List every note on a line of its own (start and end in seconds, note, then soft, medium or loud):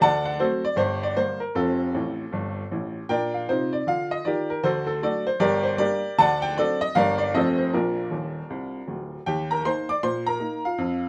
0.01 0.34 D2 medium
0.01 0.34 D3 medium
0.01 0.25 D5 medium
0.01 0.24 F#5 medium
0.01 0.26 A5 loud
0.26 0.40 F#5 medium
0.40 0.61 F#3 soft
0.40 0.61 A3 soft
0.40 0.61 C4 medium
0.40 0.63 F#4 medium
0.40 0.63 A4 medium
0.40 0.64 C5 medium
0.65 0.79 D5 medium
0.76 1.10 G1 medium
0.76 1.10 G2 medium
0.76 1.02 C5 loud
1.03 1.17 D5 medium
1.17 1.38 D3 soft
1.17 1.38 G3 soft
1.17 1.38 A#3 soft
1.17 1.41 C5 loud
1.40 1.55 A#4 medium
1.55 1.88 F1 medium
1.55 1.88 F2 medium
1.55 2.92 C4 medium
1.55 2.92 F4 medium
1.55 2.95 A4 medium
1.94 2.23 A1 medium
1.94 2.23 A2 medium
2.32 2.62 G1 medium
2.32 2.61 G2 medium
2.71 3.00 A1 medium
2.71 3.01 A2 soft
3.09 3.40 A#2 medium
3.09 3.41 D4 medium
3.09 3.32 A#4 medium
3.09 3.33 D5 medium
3.09 3.34 G5 loud
3.34 3.48 F5 medium
3.49 3.80 C3 medium
3.49 3.81 D#4 medium
3.49 3.72 F4 medium
3.49 3.73 C5 medium
3.73 3.87 D5 medium
3.87 4.18 D3 medium
3.87 4.19 F4 medium
3.87 4.12 F5 loud
4.11 4.26 D#5 medium
4.25 4.56 D#3 medium
4.25 4.49 F4 medium
4.25 4.58 G4 medium
4.25 4.48 A#4 medium
4.25 4.49 D5 medium
4.50 4.64 A#4 medium
4.64 4.97 D2 medium
4.64 4.97 D3 medium
4.64 4.87 F#4 medium
4.64 4.85 A4 medium
4.64 4.88 C5 loud
4.87 5.02 A4 medium
5.02 5.24 F#3 soft
5.02 5.24 A3 soft
5.02 5.25 D4 medium
5.02 5.26 F#4 medium
5.02 5.26 A4 medium
5.02 5.27 D5 medium
5.27 5.41 C5 medium
5.40 5.73 G1 medium
5.40 5.73 G2 medium
5.40 5.63 G4 medium
5.40 5.64 A#4 medium
5.40 5.65 D5 loud
5.63 5.79 C5 medium
5.78 6.00 G3 medium
5.78 6.01 A#3 soft
5.78 6.01 D4 medium
5.78 6.16 G4 medium
5.78 6.16 A#4 medium
5.78 6.18 D5 loud
6.18 6.52 D2 medium
6.18 6.51 D3 medium
6.18 6.42 D5 medium
6.18 6.42 F#5 loud
6.18 6.43 A5 loud
6.42 6.57 G5 loud
6.58 6.79 F#3 medium
6.58 6.79 C4 medium
6.58 6.80 D4 soft
6.58 6.81 F#4 medium
6.58 6.81 A4 medium
6.58 6.82 D5 loud
6.81 6.96 D#5 loud
6.95 7.29 G1 medium
6.95 7.29 G2 loud
6.95 7.17 G3 soft
6.95 7.17 A#3 medium
6.95 7.18 D4 medium
6.95 7.19 A#4 medium
6.95 7.17 D5 medium
6.95 7.20 F5 loud
7.18 7.34 D5 medium
7.34 7.68 F1 medium
7.34 7.67 F2 medium
7.34 7.56 A3 soft
7.34 7.56 C4 soft
7.34 7.57 F4 soft
7.34 7.58 A4 medium
7.34 7.56 C5 medium
7.34 7.59 D#5 medium
7.58 7.73 C5 medium
7.74 8.04 A#1 medium
7.74 8.04 A#2 medium
7.74 9.10 D4 medium
7.74 9.10 F4 medium
7.74 9.13 A#4 medium
8.11 8.40 D#1 medium
8.11 8.40 D#2 medium
8.50 8.79 C2 medium
8.88 9.17 D1 medium
8.88 9.17 D2 soft
9.26 9.60 D#2 medium
9.26 9.50 G4 medium
9.26 9.51 G5 medium
9.51 9.65 A#4 medium
9.51 9.66 A#5 medium
9.65 9.87 A#3 soft
9.65 9.87 D#4 soft
9.65 9.89 C5 medium
9.65 9.90 C6 medium
9.89 10.04 D5 medium
9.89 10.04 D6 loud
10.03 10.36 A#2 medium
10.03 10.27 C5 medium
10.03 10.28 C6 loud
10.27 10.64 A#4 medium
10.27 10.66 A#5 medium
10.40 10.62 A#3 soft
10.40 10.62 D#4 soft
10.65 11.09 F4 medium
10.65 11.09 F5 medium
10.78 11.09 F2 medium